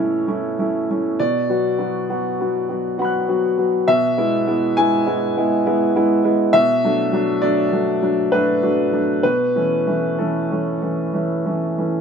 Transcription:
upright piano
Already playing: B2 A3 C#5
0.00 C#4 E4
0.28 A3 C#4 E4
0.59 A3 C#4 E4
0.91 A3 C#4 E4
1.20 B2 D5
1.50 F#3 B3 F#4
1.78 F#3 B3 F#4
2.10 F#3 B3 F#4
2.40 F#3 B3 F#4
2.69 F#3 B3 F#4
2.98 F#3 B3 F#4 F#5 B5
3.05 F#6
3.29 F#3 B3 F#4
3.58 F#3 B3 F#4
3.88 B2 E5
4.17 G#3 B3 E4
4.47 G#3 B3 E4
4.77 G#3 B3 E4 G#5
5.06 G#3 B3 E4
5.37 G#3 B3 E4
5.66 G#3 B3 E4
5.95 G#3 B3 E4
6.24 G#3 B3 E4
6.53 B2 E5
6.84 F#3 A3 D4
7.13 F#3 A3 D4
7.42 F#3 A3 D4 D5
7.72 F#3 A3 D4
8.02 F#3 A3 D4
8.32 F#3 A3 D4 B4
8.63 F#3 A3 D4
8.92 F#3 A3 D4
9.23 B2 B4
9.56 E3 A3 C#4
9.87 E3 A3 C#4
10.19 E3 A3 C#4 A4
10.51 E3 A3 C#4
10.82 E3 A3 C#4
11.14 E3 A3 C#4
11.46 E3 A3 C#4
11.78 E3 A3 C#4

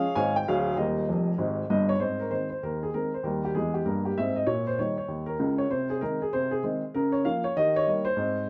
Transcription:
upright piano
Already playing: G#4 C#5 F5
0.15 G#1 G#2 C#5 F5 G#5
0.36 G5
0.48 D1 D2 G#4 C#5 F5
0.76 D#1 D#2 G4 A#4 D#5
1.09 F1 F2
1.38 G#1 G#2
1.70 G1 G2 D#5
1.89 C#5
1.99 G#2 C4 C5
2.20 A#4
2.31 D#3 G#3 C4 C5
2.50 C5
2.63 D#2 A#4
2.83 G#4
2.94 D#3 G#3 C4 A#4
3.14 C5
3.23 D#2 G3 A#4
3.45 G4
3.55 E2 G#3 G#4
3.74 G4
3.86 G2 A#3 A#4
4.05 G4
4.18 G#2 C4 E5
4.36 D#5
4.47 A#2 C#5
4.67 C5
4.79 D#3 G3 D#4 C#5
4.98 C#5
5.08 D#2
5.26 A#4
5.39 C#2 C#3
5.58 C#5
5.70 C3 C5
5.90 G#4
6.01 D#3 G#3 C4 A#4
6.22 G#4
6.33 C3 C5
6.51 G#4
6.63 D#3 G#3 C4
6.94 C#3 A#4
7.12 C#5
7.25 F3 A#3 F4 F5
7.44 C#5
7.56 D#3 G4 D#5
7.76 C#5
7.87 G3 A#3 D#4
8.05 C5
8.17 G#2 C4

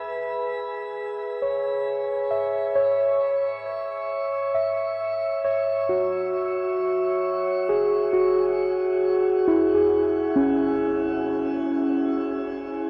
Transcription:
synth keys
Already playing: G#4 B4
1.42 C#5
2.31 E5
2.75 C#5
4.54 E5
5.44 C#5
5.89 F#4
7.69 G#4
8.13 F#4
9.48 E4
9.75 G#4
10.36 C#4

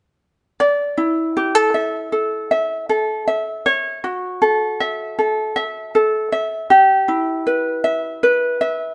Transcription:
ukulele
0.60 D5
0.97 E4
1.37 G4
1.55 A4
1.74 E5
2.12 A4
2.51 E5
2.89 A4
3.27 E5
3.66 C#5
4.04 F#4
4.42 A4
4.80 E5
5.19 A4
5.56 E5
5.95 A4
6.32 E5
6.70 G4
7.08 E4
7.47 B4
7.84 E5
8.23 B4
8.61 E5

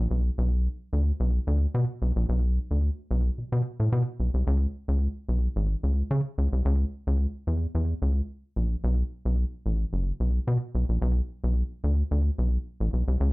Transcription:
analog synth bass
0.11 B1
0.38 B1
0.93 D2
1.20 B1
1.47 D2
1.75 B2
2.02 B1
2.16 A#1
2.29 B1
2.71 D2
3.11 B1
3.38 B2
3.52 B2
3.80 A2
3.92 B2
4.20 B1
4.34 C2
4.47 C#2
4.88 C#2
5.29 B1
5.56 G#1
5.83 C#2
6.11 C#3
6.38 C#2
6.53 C2
6.65 C#2
7.07 C#2
7.47 E2
7.75 E2
8.02 C#2
8.56 A#1
8.84 B1
9.25 B1
9.66 A1
9.93 F#1
10.20 B1
10.47 B2
10.75 B1
10.89 A#1
11.02 B1
11.44 B1
11.84 D2
12.11 D2
12.38 B1
12.80 A1
12.93 B1
13.08 C2
13.20 C#2

